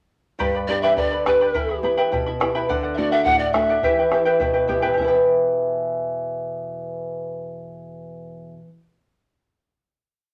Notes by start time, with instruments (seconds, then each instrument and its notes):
0.39 nylon-string guitar G2, charango G4 B4 D5 G5 B5, bombo low
0.55 charango B4 D5 B5
0.68 nylon-string guitar B3 D4 G4, charango B4 D5 G5 B5, pan flute D5
0.82 charango G4 B4 D5 G5 B5, pan flute E5
0.96 nylon-string guitar D3, charango B4 D5 G5 B5, pan flute D5, bombo low
1.12 charango B4 D5 B5
1.26 nylon-string guitar B3 D4 G4, charango B4 D5 G5 B5, pan flute B4, bombo rim, bombo low
1.41 charango G4 B4 D5 G5 B5
1.54 nylon-string guitar E2, charango E4 B4 E5 G5 B5, bombo low
1.69 charango E4 E5 B5
1.83 nylon-string guitar B3 E4 G4, charango E4 E5 G5 B5
1.97 charango E4 B4 E5 G5 B5
2.11 nylon-string guitar B2, charango E4 E5 G5 B5, bombo low
2.26 charango E4 E5 B5
2.40 nylon-string guitar B3 E4 G4, charango E4 E5 G5 B5, bombo rim, bombo low
2.55 charango E4 B4 E5 G5 B5
2.69 nylon-string guitar D3, charango A4 D5 F#5, bombo low
2.83 charango D5 F#5
2.94 nylon-string guitar A3 D4 F#4, charango A4 D5 F#5, pan flute D5 E5
3.11 charango A4 D5 F#5, pan flute E5
3.24 nylon-string guitar A2, charango A4 D5 F#5, pan flute F#5, bombo low
3.39 pan flute D5, charango F#5
3.43 charango D5
3.53 nylon-string guitar A3 D4 F#4, charango A4 D5 F#5, pan flute E5, bombo rim, bombo low
3.69 charango A4 D5 F#5
3.83 nylon-string guitar E3, charango E4 G4 B4 E5 G5, bombo low
3.99 charango E4 B4 G5
4.10 nylon-string guitar B3 E4 G4, charango E4 B4 E5 G5, bombo rim
4.25 charango E4 G4 B4 E5 G5
4.40 nylon-string guitar B2, charango E4 B4 E5 G5, bombo low
4.54 charango E4 B4 G5
4.68 nylon-string guitar B3 E4 G4, charango E4 B4 E5 G5, bombo low
4.79 nylon-string guitar E2, charango E4 B4 G5
4.83 nylon-string guitar B2, charango G4 E5
4.93 nylon-string guitar E3, charango G4
4.97 nylon-string guitar B3, charango E4 E5, bombo low
5.04 nylon-string guitar G4, charango B4 G5
5.15 nylon-string guitar E5